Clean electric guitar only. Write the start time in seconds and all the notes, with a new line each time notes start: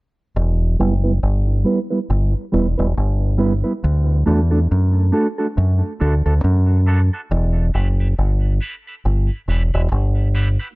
0.79 G3 B3 E4 B4
1.04 G3 B3 E4 B4
1.64 G3 B3 E4 B4
1.90 G3 B3 E4 B4
2.52 G3 B3 E4 B4
2.78 G3 B3 E4 B4
3.38 G3 B3 E4 B4
3.64 G3 B3 E4 B4
4.26 A3 D4 F#4 A4
4.51 A3 D4 F#4 A4
5.12 A3 D4 F#4 A4
5.38 A3 D4 F#4 A4
6.00 A3 D4 F#4 A4
6.26 A3 D4 F#4 A4
6.86 A3 D4 F#4 A4
7.13 A3 D4 F#4 A4
7.74 B3 E4 G4 B4
8.00 B3 E4 G4 B4
8.61 B3 E4 G4 B4
8.87 B3 E4 G4 B4
9.49 B3 E4 G4 B4
9.74 B3 E4 G4 B4
10.35 B3 E4 G4 B4
10.59 B3 E4 G4 B4